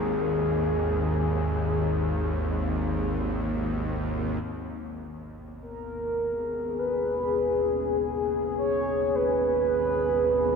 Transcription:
Already playing: synth drone G#1 D#2, soft synth lead G#4
4.43 synth drone G#1 D#2, ambient pad B3
5.11 ambient pad G#4
5.62 soft synth lead A#4
5.77 ambient pad C#4
6.79 soft synth lead B4
8.58 soft synth lead C#5
9.15 soft synth lead B4

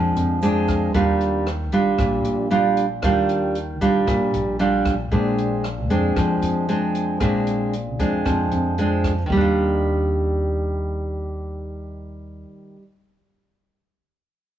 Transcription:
Already playing: upright bass F2, nylon-string guitar F3 G#3 C4 D4
0.16 upright bass F2, closed hi-hat, shaker
0.42 nylon-string guitar G#3 C4 D4, closed hi-hat, shaker
0.67 kick, cross-stick, closed hi-hat, shaker
0.94 upright bass D#2, nylon-string guitar D#3 G3 D4 F4, kick, closed hi-hat
1.21 closed hi-hat
1.47 cross-stick, closed hi-hat
1.72 upright bass A#1, nylon-string guitar G3 D4 F4, closed hi-hat
1.99 upright bass A#1, nylon-string guitar A#2, kick, cross-stick, closed hi-hat
2.25 upright bass A#1, closed hi-hat
2.51 nylon-string guitar G3 D4 F4, closed hi-hat
2.77 closed hi-hat
3.02 upright bass D#2, nylon-string guitar D#3 G3 D4 F4, kick, cross-stick, closed hi-hat
3.29 closed hi-hat
3.55 closed hi-hat
3.81 upright bass A#1, nylon-string guitar G3 D4 F4, kick, closed hi-hat
4.07 upright bass A#1, nylon-string guitar A#2, kick, cross-stick, closed hi-hat
4.34 upright bass A#1, closed hi-hat
4.59 nylon-string guitar G3 D4 F4, closed hi-hat
4.85 kick, cross-stick, closed hi-hat
5.11 upright bass A#1, nylon-string guitar A#2 G#3 C4 D4, kick, closed hi-hat
5.38 closed hi-hat
5.64 cross-stick, closed hi-hat
5.90 upright bass F2, nylon-string guitar G#3 C4 D4, closed hi-hat
6.16 upright bass F2, nylon-string guitar F3, kick, cross-stick, closed hi-hat
6.41 upright bass F2, closed hi-hat
6.68 nylon-string guitar G#3 C4 D4, closed hi-hat
6.95 closed hi-hat
7.20 upright bass A#1, nylon-string guitar A#2 G#3 C4 D4, kick, cross-stick, closed hi-hat
7.47 closed hi-hat
7.73 closed hi-hat
7.99 upright bass F2, nylon-string guitar G#3 C4 D4, kick, closed hi-hat
8.25 upright bass F2, nylon-string guitar F3, kick, cross-stick, closed hi-hat
8.51 upright bass F2, closed hi-hat
8.78 nylon-string guitar G#3 C4 D4, closed hi-hat
9.04 kick, cross-stick, closed hi-hat
9.26 nylon-string guitar D#3
9.30 upright bass D#2, nylon-string guitar G3, kick
9.37 nylon-string guitar D4
9.41 nylon-string guitar F4

